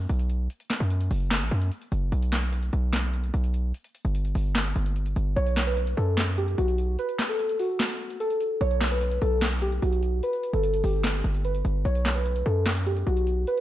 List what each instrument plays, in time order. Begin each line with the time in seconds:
0.09 808-style bass B1, closed hi-hat
0.19 closed hi-hat
0.30 closed hi-hat
0.50 closed hi-hat
0.60 closed hi-hat
0.70 snare, clap, closed hi-hat
0.80 808-style bass F#2, closed hi-hat
0.90 closed hi-hat
1.00 closed hi-hat
1.11 808-style bass F#1, open hi-hat
1.31 snare, clap, closed hi-hat
1.41 808-style bass A1, closed hi-hat
1.51 808-style bass F#2, closed hi-hat
1.61 closed hi-hat
1.72 closed hi-hat
1.82 closed hi-hat
1.92 808-style bass F#1, closed hi-hat
2.12 808-style bass B1, closed hi-hat
2.22 closed hi-hat
2.32 snare, clap, closed hi-hat
2.43 closed hi-hat
2.53 closed hi-hat
2.63 closed hi-hat
2.73 808-style bass B1, closed hi-hat
2.93 snare, clap, closed hi-hat
3.03 closed hi-hat
3.14 closed hi-hat
3.24 closed hi-hat
3.34 808-style bass B1, closed hi-hat
3.44 closed hi-hat
3.54 closed hi-hat
3.74 closed hi-hat
3.84 closed hi-hat
3.95 closed hi-hat
4.05 808-style bass G1, closed hi-hat
4.15 closed hi-hat
4.25 closed hi-hat
4.35 808-style bass G1, open hi-hat
4.55 snare, clap, closed hi-hat
4.66 closed hi-hat
4.76 808-style bass G1, closed hi-hat
4.86 closed hi-hat
4.96 closed hi-hat
5.06 closed hi-hat
5.16 808-style bass G1, closed hi-hat
5.36 808-style bass B1, synth keys C#5, closed hi-hat
5.47 closed hi-hat
5.57 snare, clap, closed hi-hat
5.67 synth keys B4, closed hi-hat
5.77 closed hi-hat
5.87 closed hi-hat
5.97 808-style bass F#2, synth keys A4, closed hi-hat
6.18 snare, clap, closed hi-hat
6.28 closed hi-hat
6.38 synth keys G4, closed hi-hat
6.48 closed hi-hat
6.58 808-style bass B1, synth keys F#4, closed hi-hat
6.68 closed hi-hat
6.78 closed hi-hat
6.99 synth keys B4, closed hi-hat
7.09 closed hi-hat
7.19 snare, clap, closed hi-hat
7.29 synth keys A4, closed hi-hat
7.39 closed hi-hat
7.49 closed hi-hat
7.59 synth keys F#4, open hi-hat
7.80 snare, clap, closed hi-hat
7.90 closed hi-hat
8.00 closed hi-hat
8.10 closed hi-hat
8.20 synth keys A4, closed hi-hat
8.30 closed hi-hat
8.40 closed hi-hat
8.61 808-style bass B1, synth keys C#5, closed hi-hat
8.71 closed hi-hat
8.81 snare, clap, closed hi-hat
8.91 synth keys B4, closed hi-hat
9.01 closed hi-hat
9.11 closed hi-hat
9.22 808-style bass B1, synth keys A4, closed hi-hat
9.42 snare, clap, closed hi-hat
9.52 closed hi-hat
9.62 synth keys G4, closed hi-hat
9.72 closed hi-hat
9.82 808-style bass B1, synth keys F#4, closed hi-hat
9.92 closed hi-hat
10.03 closed hi-hat
10.23 synth keys B4, closed hi-hat
10.33 closed hi-hat
10.43 closed hi-hat
10.53 808-style bass G1, synth keys A4, closed hi-hat
10.63 closed hi-hat
10.73 closed hi-hat
10.84 808-style bass G1, synth keys G4, open hi-hat
11.04 snare, clap, closed hi-hat
11.14 closed hi-hat
11.24 808-style bass G1, closed hi-hat
11.34 closed hi-hat
11.45 synth keys B4, closed hi-hat
11.55 closed hi-hat
11.65 808-style bass G1, closed hi-hat
11.85 808-style bass B1, synth keys C#5, closed hi-hat
11.95 closed hi-hat
12.05 snare, clap, closed hi-hat
12.15 synth keys B4, closed hi-hat
12.26 closed hi-hat
12.36 closed hi-hat
12.46 808-style bass F#2, synth keys A4, closed hi-hat
12.66 snare, clap, closed hi-hat
12.76 closed hi-hat
12.86 synth keys G4, closed hi-hat
12.97 closed hi-hat
13.07 808-style bass B1, synth keys F#4, closed hi-hat
13.17 closed hi-hat
13.27 closed hi-hat
13.47 synth keys B4, closed hi-hat
13.57 closed hi-hat